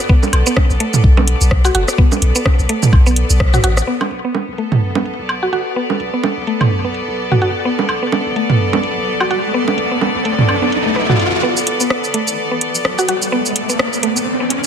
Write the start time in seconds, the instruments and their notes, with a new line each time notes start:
Already playing: string section B3 A4 D5
0.09 synth arpeggio sound B3, kick
0.23 low bongo, shaker
0.33 sub bass B1, closed hi-hat, high woodblock
0.47 synth arpeggio sound B3, shaker
0.56 kick, cross-stick, low bongo
0.70 sub bass B1, shaker
0.80 synth arpeggio sound A3, closed hi-hat
0.94 mid tom, shaker
1.04 sub bass B1, kick
1.17 synth arpeggio sound B3, low bongo
1.27 closed hi-hat
1.41 sub bass B1, shaker
1.51 kick, cross-stick
1.65 synth arpeggio sound F#4, high woodblock, shaker
1.75 sub bass F#1, synth arpeggio sound F#4, closed hi-hat
1.88 cross-stick, shaker
1.98 synth arpeggio sound B3, kick
2.12 low bongo, shaker
2.22 sub bass B1, closed hi-hat
2.36 synth arpeggio sound B3, shaker
2.46 kick, cross-stick, low bongo
2.59 sub bass B1, shaker
2.69 synth arpeggio sound A3, closed hi-hat
2.83 mid tom, shaker
2.93 sub bass B1, kick, high woodblock
3.06 synth arpeggio sound B3, shaker
3.16 closed hi-hat
3.30 sub bass B1, shaker
3.40 kick, cross-stick
3.54 synth arpeggio sound F#4, mid tom, shaker
3.64 sub bass A1, synth arpeggio sound F#4, closed hi-hat
3.77 cross-stick, shaker
3.87 synth arpeggio sound B3, string section B3
4.01 low bongo, high woodblock
4.11 sub bass B1, closed hi-hat
4.25 synth arpeggio sound B3
4.35 low bongo
4.48 sub bass B1
4.53 string section A4
4.58 synth arpeggio sound A3, closed hi-hat
4.72 mid tom
4.82 sub bass B1
4.95 synth arpeggio sound B3, low bongo
5.06 closed hi-hat
5.19 sub bass B1, string section D5
5.29 high woodblock
5.43 synth arpeggio sound F#4
5.53 sub bass F#1, synth arpeggio sound F#4, closed hi-hat
5.76 synth arpeggio sound B3
5.90 low bongo
6.00 sub bass B1, closed hi-hat
6.13 synth arpeggio sound B3
6.24 low bongo
6.37 sub bass B1
6.47 synth arpeggio sound A3, closed hi-hat
6.61 mid tom, high woodblock
6.71 sub bass B1
6.84 synth arpeggio sound B3
6.94 closed hi-hat
7.08 sub bass B1
7.32 synth arpeggio sound F#4, mid tom
7.42 sub bass F#1, synth arpeggio sound F#4, closed hi-hat
7.65 synth arpeggio sound B3, riser
7.79 low bongo
7.89 sub bass B1, closed hi-hat, high woodblock
8.02 synth arpeggio sound B3
8.12 low bongo
8.26 sub bass B1
8.36 synth arpeggio sound A3, closed hi-hat
8.50 mid tom
8.60 sub bass B1
8.73 synth arpeggio sound B3, low bongo
8.83 closed hi-hat
8.97 sub bass B1
9.20 synth arpeggio sound F#4, high woodblock
9.31 sub bass F#1, synth arpeggio sound F#4, closed hi-hat
9.54 synth arpeggio sound B3
9.68 low bongo
9.78 sub bass B1, closed hi-hat
9.91 synth arpeggio sound B3
10.01 low bongo
10.15 sub bass B1
10.25 synth arpeggio sound A3, closed hi-hat
10.39 mid tom
10.49 sub bass B1, high woodblock
10.62 synth arpeggio sound B3
10.72 closed hi-hat
10.86 sub bass B1, synth arpeggio sound A3
10.96 synth arpeggio sound B4
11.09 synth arpeggio sound F#4, mid tom
11.20 sub bass F#1, closed hi-hat
11.43 synth arpeggio sound B3, riser
11.57 shaker
11.67 closed hi-hat
11.80 synth arpeggio sound B3, shaker
11.90 cross-stick
12.04 shaker
12.14 synth arpeggio sound A3, closed hi-hat
12.28 shaker
12.51 synth arpeggio sound B3
12.61 closed hi-hat
12.75 shaker
12.85 cross-stick
12.98 synth arpeggio sound F#4, shaker
13.09 synth arpeggio sound F#4, closed hi-hat
13.22 shaker
13.32 synth arpeggio sound B3
13.46 shaker
13.56 closed hi-hat
13.69 synth arpeggio sound B3, shaker
13.79 cross-stick
13.93 shaker
14.03 synth arpeggio sound A3, closed hi-hat
14.17 shaker
14.40 synth arpeggio sound B3
14.50 closed hi-hat